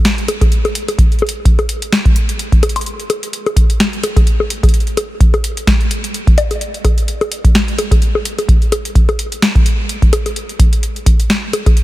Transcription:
0.05 snare, closed hi-hat
0.18 closed hi-hat
0.28 closed hi-hat, high bongo
0.41 kick, closed hi-hat, high bongo
0.52 closed hi-hat
0.65 closed hi-hat, high bongo
0.75 closed hi-hat
0.88 closed hi-hat, high bongo
0.98 kick, closed hi-hat
1.12 closed hi-hat
1.19 closed hi-hat, high bongo
1.27 closed hi-hat
1.29 closed hi-hat
1.45 kick, closed hi-hat
1.59 closed hi-hat, high bongo
1.69 closed hi-hat
1.82 closed hi-hat
1.93 snare, closed hi-hat
2.05 kick, closed hi-hat
2.16 closed hi-hat
2.29 closed hi-hat
2.39 closed hi-hat
2.52 kick, closed hi-hat
2.63 closed hi-hat, high bongo
2.69 closed hi-hat
2.76 closed hi-hat, high bongo
2.81 closed hi-hat
2.86 closed hi-hat
3.00 closed hi-hat
3.10 closed hi-hat, high bongo
3.23 closed hi-hat
3.33 closed hi-hat
3.46 closed hi-hat, high bongo
3.56 kick, closed hi-hat
3.70 closed hi-hat
3.80 snare, closed hi-hat
3.93 closed hi-hat
4.04 closed hi-hat, high bongo
4.16 kick, closed hi-hat, high bongo
4.27 closed hi-hat
4.40 high bongo
4.50 closed hi-hat
4.63 kick, closed hi-hat, high bongo
4.69 closed hi-hat
4.74 closed hi-hat
4.80 closed hi-hat
4.87 closed hi-hat
4.97 closed hi-hat, high bongo
5.20 kick, closed hi-hat
5.34 closed hi-hat, high bongo
5.44 closed hi-hat
5.57 closed hi-hat
5.67 kick, snare, closed hi-hat
5.81 closed hi-hat
5.91 closed hi-hat
6.04 closed hi-hat
6.14 closed hi-hat
6.27 kick, closed hi-hat
6.38 closed hi-hat, high bongo
6.51 closed hi-hat, high bongo
6.61 closed hi-hat
6.74 closed hi-hat
6.85 kick, closed hi-hat, high bongo
6.98 closed hi-hat
7.08 closed hi-hat
7.21 closed hi-hat, high bongo
7.32 closed hi-hat
7.44 kick, closed hi-hat
7.55 snare, closed hi-hat
7.68 closed hi-hat
7.79 closed hi-hat, high bongo
7.91 kick, closed hi-hat, high bongo
8.02 closed hi-hat
8.15 high bongo
8.25 closed hi-hat
8.39 closed hi-hat, high bongo
8.49 kick, closed hi-hat
8.62 closed hi-hat
8.72 closed hi-hat, high bongo
8.85 closed hi-hat
8.95 kick, closed hi-hat
9.09 closed hi-hat, high bongo
9.19 closed hi-hat
9.32 closed hi-hat
9.42 snare, closed hi-hat
9.55 kick, closed hi-hat
9.66 closed hi-hat
9.89 closed hi-hat
10.02 kick, closed hi-hat
10.13 closed hi-hat, high bongo
10.26 closed hi-hat, high bongo
10.36 closed hi-hat
10.49 closed hi-hat
10.59 kick, closed hi-hat
10.73 closed hi-hat
10.83 closed hi-hat
10.96 closed hi-hat
11.06 kick, closed hi-hat
11.20 closed hi-hat
11.30 snare, closed hi-hat
11.53 closed hi-hat, high bongo
11.66 kick, closed hi-hat, high bongo
11.77 closed hi-hat

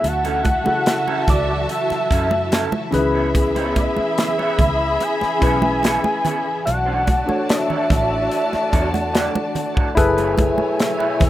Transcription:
Already playing: E4
0.04 D2 E3 F#3 F#4 E5 F#5 A5, muted clean electric guitar stroke, closed hi-hat, muted conga
0.24 F#3 C#4 E4 A4, closed hi-hat, muted conga
0.45 muted clean electric guitar stroke, kick, closed hi-hat, high conga
0.64 C#3 E4 F#4 A4, muted clean electric guitar stroke, muted fingered electric bass stroke, high conga
0.86 muted clean electric guitar stroke, snare, closed hi-hat, muted conga
1.07 F#3 C#4 E4 A4, muted conga
1.27 C#2 D5, muted clean electric guitar stroke, kick, closed hi-hat, high conga, low conga
1.49 muted clean electric guitar stroke
1.69 E5, muted clean electric guitar stroke, closed hi-hat
1.90 muted fingered electric bass stroke, muted clean electric guitar stroke, snare, muted conga
2.11 F#2 F#3 C#4 E4 A4, kick, closed hi-hat
2.31 high conga
2.51 F#3 C#4 E4 A4, snare, closed hi-hat, muted conga
2.72 muted conga, high conga
2.91 C#2 B3 C#4 D#4 G#4 B4 E5 B5, muted clean electric guitar stroke, closed hi-hat, low conga
2.98 E4
3.14 B3 E4 G#4 C#5
3.35 muted clean electric guitar stroke, kick, closed hi-hat, muted conga
3.55 B3 E4 G#4 C#5, closed hi-hat, muted conga
3.76 E5, muted clean electric guitar stroke, kick, closed hi-hat, high conga
3.97 muted fingered electric bass stroke, muted clean electric guitar stroke, high conga
4.18 muted clean electric guitar stroke, snare, closed hi-hat
4.38 B3 E4 G#4 C#5, muted conga
4.59 C#2 C#4, muted clean electric guitar stroke, kick, closed hi-hat, high conga, low conga
4.81 muted clean electric guitar stroke
5.00 G#5, muted clean electric guitar stroke, closed hi-hat, muted conga
5.21 muted clean electric guitar stroke, muted fingered electric bass stroke, snare, muted conga
5.39 B1 B3 C#4 E4 G#4 B4 C#5, kick, closed hi-hat
5.62 muted clean electric guitar stroke, high conga
5.83 B3 E4 G#4 C#5, snare, closed hi-hat, muted conga
6.04 muted clean electric guitar stroke, muted conga, high conga
6.24 B3 E4 G#4 C#5, closed hi-hat, low conga
6.44 muted clean electric guitar stroke
6.65 B1 A3 D4 F#4 D5 F#5 A5, muted clean electric guitar stroke, closed hi-hat, muted conga
6.86 A3 D4 F#4 C#5
7.06 muted clean electric guitar stroke, kick, closed hi-hat, high conga
7.26 D4 F#4 A4 C#5, muted clean electric guitar stroke, muted fingered electric bass stroke, high conga
7.49 E5, muted clean electric guitar stroke, snare, closed hi-hat, muted conga
7.69 A3 D4 F#4 C#5, low conga
7.90 A1, muted clean electric guitar stroke, kick, snare, closed hi-hat, high conga, low conga
8.11 muted clean electric guitar stroke
8.31 muted clean electric guitar stroke, closed hi-hat
8.52 muted clean electric guitar stroke, muted fingered electric bass stroke, snare, muted conga
8.72 E2 A3 D4 F#4 C#5 A5, kick, closed hi-hat
8.92 F#5, muted clean electric guitar stroke, closed hi-hat, high conga
9.13 A3 D4 F#4 C#5 D5, snare, closed hi-hat, muted conga
9.35 muted conga, high conga
9.55 muted clean electric guitar stroke, closed hi-hat, low conga
9.75 A3 D4 F#4 C#5, kick
9.95 F#1 B2 F#3 E4 G#4 A4 B4 C#5 G#5, muted clean electric guitar stroke, kick, closed hi-hat, muted conga
10.17 A3 E4 G#4 B4, closed hi-hat, muted conga
10.38 muted clean electric guitar stroke, kick, closed hi-hat, high conga
10.42 E5
10.58 muted clean electric guitar stroke, muted fingered electric bass stroke, high conga
10.78 muted clean electric guitar stroke, snare, closed hi-hat
10.98 A3 E4 G#4 B4, muted conga
11.20 E1, muted clean electric guitar stroke, kick, snare, closed hi-hat, high conga, low conga

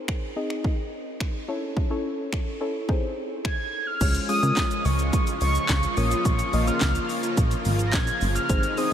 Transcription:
0.08 finger snap, kick
0.36 C4 D#4 G#4 D#5
0.50 finger snap
0.64 kick
1.20 finger snap, kick
1.48 C#4 E4 A4 C#5
1.77 kick
1.90 C#4 E4 A4 C#5
2.33 finger snap, kick
2.60 C#4 E4 A4 C#5
2.88 C4 D#4 G#4 C5, kick
3.45 G#6, finger snap, kick
3.87 F6
4.01 C#2 C#3 F3 G#3 C#4 F4 G#4 C#5, kick, closed hi-hat, crash, shaker
4.15 closed hi-hat, shaker
4.29 G#3 C#4 F4 G#4 C#5 D#6, open hi-hat, shaker
4.43 C#3 G#3 C#4 F4 G#4 A#4, closed hi-hat, shaker
4.57 kick, snare, clap, closed hi-hat, shaker
4.71 closed hi-hat, shaker
4.85 C#2 C#6, open hi-hat, shaker
4.99 closed hi-hat, shaker
5.13 kick, closed hi-hat, shaker
5.27 closed hi-hat, shaker
5.41 C#2 C#6, open hi-hat, shaker
5.55 closed hi-hat, shaker
5.69 C#2, kick, snare, clap, closed hi-hat, shaker
5.83 closed hi-hat, shaker
5.97 A#1 A#3 C#4 F4 A#4 C#5 D#6, open hi-hat, shaker
6.11 closed hi-hat, shaker
6.25 A#1 C#6, kick, closed hi-hat, shaker
6.39 closed hi-hat, shaker
6.53 A#1 A#3 C#4 F4 A#4 D#5, open hi-hat, shaker
6.67 A#3 C#4 F4 A#4 C#5 F6, closed hi-hat, shaker
6.81 C#2, kick, snare, clap, closed hi-hat, shaker
6.95 closed hi-hat, shaker
7.09 open hi-hat, shaker
7.23 closed hi-hat, shaker
7.37 A#1, kick, closed hi-hat, shaker
7.51 closed hi-hat, shaker
7.65 G#1, open hi-hat, shaker
7.79 closed hi-hat, shaker
7.87 A#6
7.93 A#1 G#6, kick, snare, clap, closed hi-hat, shaker
8.07 closed hi-hat, shaker
8.21 G1, open hi-hat, shaker
8.35 F6, closed hi-hat, shaker
8.49 G#1 C3 D#3 G#3 C4 D#4 G#4 C5, kick, closed hi-hat, shaker
8.63 closed hi-hat, shaker
8.77 G#3 C4 D#4 G#4 C5 D#6, open hi-hat, shaker

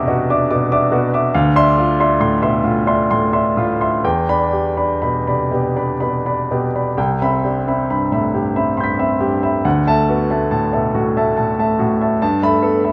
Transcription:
Already playing: E2 B2 C3 D4 F#4 E5 F#5 D6
0.07 B2 F#4
0.30 D4 E5 D6
0.51 B2 D6
0.72 D4 E5 D6
0.92 B2 F#4
1.14 E5 D6
1.34 D2 F5
1.56 D4 E5 C6
1.78 F4
2.00 D4 E5 C6
2.20 A2 C6
2.42 B2 E5 C6
2.63 A2 F4
2.87 D4 E5 C6
3.11 A2 C6
3.33 D4 E5 C6
3.57 A2 F4
3.81 E5 C6
4.04 E2 G5
4.29 D4 D5 B5
4.53 G4
4.77 D4 D5 B5
5.02 B2 B5
5.27 C3 D5 B5
5.51 B2 G4
5.76 D4 D5 B5
6.00 B2 B5
6.26 D4 D5 B5
6.51 B2 G4
6.75 D5 B5
6.97 C2 G5
7.22 C4 E5 B5
7.44 D4 G4
7.68 C4 E5 B5
7.90 G2 B5
8.12 A2 E5 B5
8.34 G2 G4
8.56 C4 E5 B5
8.77 G2 B5 C6 G6
8.84 B6
8.99 C4 E5 B5
9.20 G2 G4
9.43 E5 B5
9.65 D2 F#5
9.87 A3 E5 A5
10.09 B3 F#4
10.30 A3 E5 A5
10.51 A2 A5
10.73 B2 E5 A5
10.95 A2 F#4
11.17 A3 E5 A5
11.37 A2 A5
11.59 A3 E5 A5
11.79 A2 F#4
12.01 E5 A5
12.22 G2 A5
12.43 A3 E5 B5
12.63 B3 A4
12.84 A3 E5 B5

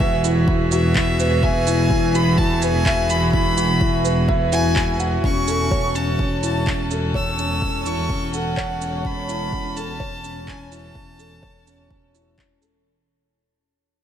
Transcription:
Already playing: E1 E3 B3 E4 F#4 G#4 B4 E5
0.00 E5, kick
0.24 E4, shaker
0.48 E4, kick
0.72 F#4 E5, shaker
0.95 E4, kick, clap
1.20 B4, shaker
1.43 E5 G#5, kick
1.67 E4, shaker
1.91 E4, kick
2.14 F#4 B5, shaker
2.38 E4 A5, kick
2.62 B4 G#5, shaker
2.86 E5, kick, clap
3.10 E4 B5, shaker
3.33 E4 B5, kick
3.57 F#4, shaker
3.81 E4, kick
4.04 B4, shaker
4.28 E5, kick
4.52 E4 G#5, shaker
4.76 E4, kick, clap
5.00 F#5, shaker
5.24 E1 C#4 C#6, kick
5.48 A4, shaker
5.64 A4
5.71 C#5, kick
5.95 C#4 A5, shaker
6.19 C#4, kick
6.43 E4 A5, shaker
6.67 C#4, kick, clap
6.91 A4, shaker
7.14 C#5 E6, kick
7.38 C#4, shaker
7.62 C#4, kick
7.86 E4 C#6, shaker
8.10 C#4, kick
8.33 A4 F#5, shaker
8.57 C#5, kick, clap
8.81 C#4, shaker
9.05 C#4 B5, kick
9.29 E4, shaker
9.53 C#4, kick
9.77 A4 A5, shaker
10.00 C#5, kick
10.24 C#4, shaker
10.48 C#4 G#5, kick, clap
10.71 E4 A5, shaker
10.95 C#4, kick
11.19 A4, shaker
11.43 C#5, kick
11.66 C#4, shaker
11.90 C#4, kick
12.14 E4, shaker
12.38 C#4, kick, clap
12.62 A4, shaker

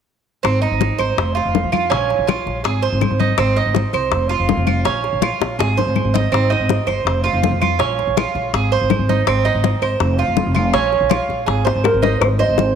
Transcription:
0.43 G#1 C4, high bongo, high conga, claves
0.62 D#4, high bongo, high conga
0.71 G#1
0.81 high bongo, high conga
0.98 G#1 C5, high bongo, high conga, claves
1.18 F1, high bongo, high conga
1.35 F4, high bongo, high conga
1.45 F1
1.55 high bongo, low bongo, high conga
1.64 F2
1.72 F4, high conga, claves
1.90 A#1 C#4, high bongo, high conga
2.10 high bongo, high conga
2.19 A#1
2.27 F4, high bongo, high conga, claves
2.46 A#1, high bongo, high conga
2.64 G#1 G#4, high bongo, high conga
2.82 C5, high bongo, high conga
2.92 G#1
3.01 high bongo, low bongo, high conga, claves
3.11 G#1
3.20 D#4, high conga
3.38 G#1 C4, high bongo, claves
3.57 D#4, high bongo, high conga
3.66 G#1
3.75 high bongo, high conga
3.93 C2 C5, high bongo, high conga, claves
4.12 F1, high bongo, high conga
4.29 F4, high bongo, high conga
4.40 F1
4.49 high bongo, low bongo, high conga
4.57 F1
4.67 F4, high conga, claves
4.85 A#1 C#4, high bongo, high conga
5.04 high bongo, high conga
5.13 A#1
5.22 F4, high bongo, high conga, claves
5.40 A#1, high bongo, high conga
5.59 G#1 G#4, high bongo, high conga
5.77 C5, low bongo, high conga
5.86 G#1
5.96 high conga, claves
6.05 G#1
6.14 D#4, low bongo, high conga
6.32 G#1 C4, high bongo, high conga, claves
6.50 D#4, high bongo, high conga
6.60 G#1
6.69 high bongo, high conga
6.87 G1 C5, high bongo, high conga, claves
7.05 F1, high bongo, high conga
7.24 F4, high bongo, high conga
7.33 F1
7.43 high bongo, low bongo, high conga
7.51 F2
7.61 F4, high conga, claves
7.79 A#1 C#4, high bongo, high conga
7.99 high bongo, high conga
8.07 A#1
8.17 F4, high bongo, high conga, claves
8.35 A#1, high bongo, high conga
8.53 G#1 G#4, high bongo, high conga
8.72 C5, high bongo, high conga
8.81 G#1
8.90 high bongo, low bongo, high conga, claves
8.99 G#1
9.09 D#4, high conga
9.27 G#1 C4, high bongo, high conga, claves
9.45 D#4, high bongo, high conga
9.55 G#1
9.64 high bongo, high conga
9.82 G#1 C5, high bongo, high conga, claves
10.00 F1, high bongo, high conga
10.18 F4, high bongo, high conga
10.28 F1
10.37 high bongo, low bongo, high conga
10.46 F1
10.55 F4, high conga, claves
10.74 A#1 C#4, high bongo, high conga
10.92 high bongo, high conga
11.01 A#1
11.09 F4, high bongo, high conga, claves
11.29 A#1, high bongo, high conga
11.46 G#1 G#4, high bongo, high conga
11.65 C5, high bongo, high conga
11.75 G#1
11.84 A#4, high bongo, high conga, claves
11.94 G#1
12.02 D#4 C5, low bongo, high conga
12.21 G#1 C5, high bongo, high conga, claves
12.39 C5 D#5, high bongo, high conga
12.48 G#1
12.58 high bongo, high conga

